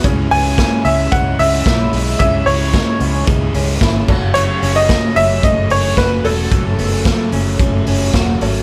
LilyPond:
<<
  \new Staff \with { instrumentName = "Upright piano" } { \time 4/4 \key fis \dorian \tempo 4 = 111 r8 gis''4 e''8 fis''8 e''4. | e''8 cis''4. r2 | cis''8. dis''8. e''8 dis''8 cis''8 b'8 a'8~ | a'2.~ a'8 r8 | }
  \new Staff \with { instrumentName = "Upright piano" } { \time 4/4 \key fis \dorian <cis' e' gis' cis''>1 | <cis' e' gis' e''>2.~ <cis' e' gis' e''>8 <cis' fis' a' cis''>8~ | <cis' fis' a' cis''>2.~ <cis' fis' a' cis''>8 <cis' fis' a' cis''>8~ | <cis' fis' a' cis''>2.~ <cis' fis' a' cis''>8 <cis' fis' a' cis''>8 | }
  \new Staff \with { instrumentName = "Clean electric guitar" } { \time 4/4 \key fis \dorian cis8 b16 cis'16 gis8 cis'8 gis8 cis'8 e'8 gis8 | cis8 cis'8 gis8 b16 cis'16 gis8 cis'8 e'8 fis,8 | fis,8 cis'8 a8 cis'8 a8 cis'8 fis'8 a8 | fis,8 b16 cis'16 a8 cis'8 a8 cis'8 fis'8 a8 | }
  \new Staff \with { instrumentName = "Overdriven electric guitar" } { \time 4/4 \key fis \dorian <cis gis cis' e'>8 <gis cis' e'>8 <cis gis cis' e'>8 <gis cis' e'>8 <cis gis cis' e'>8 <gis cis' e'>8 <cis gis cis' e'>8 <gis cis' e'>8 | <cis gis cis' e'>8 <gis cis' e'>8 <cis gis cis' e'>8 <gis cis' e'>8 <cis gis cis' e'>8 <gis cis' e'>8 <cis gis cis' e'>8 <fis a cis'>8 | <fis, cis fis a cis'>8 <fis a cis'>8 <fis, cis fis a cis'>8 <fis a cis'>8 <cis fis a cis'>8 <fis a cis'>8 <fis, cis fis a cis'>8 <fis a cis'>8 | <fis, cis fis a cis'>8 <fis a cis'>8 <fis, cis fis a cis'>8 <fis a cis'>8 <cis fis a cis'>8 <fis a cis'>8 <fis, cis fis a cis'>8 <fis a cis'>8 | }
  \new Staff \with { instrumentName = "Fingered electric bass" } { \clef bass \time 4/4 \key fis \dorian cis,8 cis,8. r16 cis,8 cis,8 cis,8 b,,8 b,,8 | cis,8 cis,8. r16 cis,8 cis,8 cis,8 gis,,8 fis,,8~ | fis,,8 fis,,8. r16 fis,,8 fis,,8 fis,,8 fis,,8 e,,8 | fis,,8 fis,,8. r16 fis,,8 fis,,8 fis,,8 e,,8 gis,,8 | }
  \new DrumStaff \with { instrumentName = "Drums" } \drummode { \time 4/4 <hhp bd cymr>8 hho8 <hhp bd cymr sn>8 hho8 <hhp bd cymr>8 hho8 <hhp bd cymr sn>8 hho8 | <hhp bd cymr>8 hho8 <hhp bd cymr sn>8 hho8 <hhp bd cymr>8 hho8 <hhp bd cymr sn>8 <cymc bd>8 | <hhp cymr>8 hho8 <hhp bd cymr sn>8 hho8 <hhp bd cymr>8 hho8 <hhp bd cymr sn>8 hho8 | <hhp bd cymr>8 hho8 <hhp bd cymr sn>8 hho8 <hhp bd cymr>8 hho8 <hhp bd cymr sn>8 hho8 | }
>>